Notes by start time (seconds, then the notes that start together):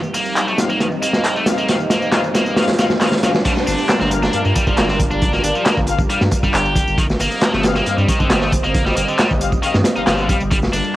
Already playing: G3 C4 D#4, riser
0.03 tambourine
0.14 A#3, open hi-hat, tambourine
0.25 tambourine
0.36 clap, closed hi-hat, tambourine
0.48 A3, tambourine
0.58 C4 G4 F5, snare, closed hi-hat, tambourine
0.70 A#3, tambourine
0.80 D#3, snare, closed hi-hat, tambourine
0.92 tambourine
1.02 A#3, closed hi-hat, tambourine
1.13 snare, tambourine
1.24 clap, closed hi-hat, tambourine
1.36 A3, tambourine
1.46 C4 G4 F5, snare, closed hi-hat, tambourine
1.58 A#3, tambourine
1.69 D#3 C4 G4 F5, snare, closed hi-hat, tambourine
1.80 tambourine
1.90 A#3, snare, closed hi-hat, tambourine
2.02 tambourine
2.12 D#3 C4 G4 F5, snare, clap, closed hi-hat, tambourine
2.24 tambourine
2.35 A#3, snare, closed hi-hat, tambourine
2.46 tambourine
2.57 D#3 C4 G4 F5, snare, closed hi-hat, tambourine
2.62 closed hi-hat
2.68 snare, closed hi-hat, tambourine
2.73 closed hi-hat
2.79 D#3 C4 G4 F5, snare, closed hi-hat, tambourine
2.90 snare, tambourine
3.01 D#3 C4 G4 F5, snare, clap, closed hi-hat, tambourine
3.07 closed hi-hat
3.12 snare, closed hi-hat, tambourine
3.18 closed hi-hat
3.23 D#3 C4 G4 F5, snare, closed hi-hat, tambourine
3.35 snare, tambourine
3.45 G3 D4 F4 A#4, kick, closed hi-hat, crash, tambourine, downlifter
3.57 snare, tambourine
3.67 G1 D4, open hi-hat, tambourine
3.79 tambourine
3.89 snare, clap, closed hi-hat, tambourine
4.00 G1 C4, snare, tambourine
4.11 A#3 G4 F5, closed hi-hat, tambourine
4.23 D4, snare, tambourine
4.33 G2 A#3 G4 F5, closed hi-hat, tambourine
4.45 G2 A#3, tambourine
4.55 G3, kick, closed hi-hat, tambourine
4.67 G1 F3, kick, tambourine
4.77 G1 A#3, snare, clap, closed hi-hat, tambourine
4.89 C4, snare, tambourine
5.00 kick, closed hi-hat, tambourine
5.11 G1 D4, tambourine
5.22 kick, closed hi-hat, tambourine
5.33 A#3, snare, tambourine
5.44 G1 D4, closed hi-hat, tambourine
5.55 F3, tambourine
5.65 A#3, snare, clap, closed hi-hat, tambourine
5.77 G1, kick, tambourine
5.87 A#3 G4 F5, closed hi-hat, tambourine
5.99 kick, tambourine
6.10 G3 A#3 G4 F5, closed hi-hat, tambourine
6.21 G2, snare, tambourine
6.31 kick, closed hi-hat, tambourine
6.43 G1 G3, kick, tambourine
6.54 G1 G4, clap, closed hi-hat, tambourine
6.65 tambourine
6.76 kick, closed hi-hat, tambourine
6.87 G1, tambourine
6.98 D#3 G3 C4 D#5, kick, closed hi-hat, tambourine
7.10 snare, tambourine
7.19 G1 A#3, open hi-hat, tambourine
7.32 tambourine
7.41 snare, clap, closed hi-hat, tambourine
7.53 G1 A3, snare, tambourine
7.63 C4 G4 F5, snare, closed hi-hat, tambourine
7.75 A#3, snare, tambourine
7.86 G2 C4 G4 F5, closed hi-hat, tambourine
7.98 G2 G3, tambourine
8.08 D#3, kick, closed hi-hat, tambourine
8.20 G1 D3, kick, tambourine
8.30 G1 G3, snare, clap, closed hi-hat, tambourine
8.42 A3, snare, tambourine
8.52 kick, closed hi-hat, tambourine
8.64 G1 A#3, tambourine
8.74 kick, closed hi-hat, tambourine
8.86 G3, snare, tambourine
8.96 G1 A#3, closed hi-hat, tambourine
9.08 D3, tambourine
9.18 G3, snare, clap, closed hi-hat, tambourine
9.30 G1, kick, tambourine
9.41 C4 G4 F5, closed hi-hat, tambourine
9.52 kick, tambourine
9.63 D#3 C4 G4 F5, closed hi-hat, tambourine
9.74 G2, snare, tambourine
9.84 snare, closed hi-hat, tambourine
9.96 G1 C4 D#4 G4 F5, tambourine
10.07 G1 D#3, snare, clap, closed hi-hat, tambourine
10.18 D3, tambourine
10.29 G3 C4 G4 F5, kick, closed hi-hat, tambourine
10.40 G1, tambourine
10.50 G3 D4 F4 A#4, kick, closed hi-hat, tambourine
10.63 snare, tambourine
10.73 G1 D4, open hi-hat, tambourine
10.85 tambourine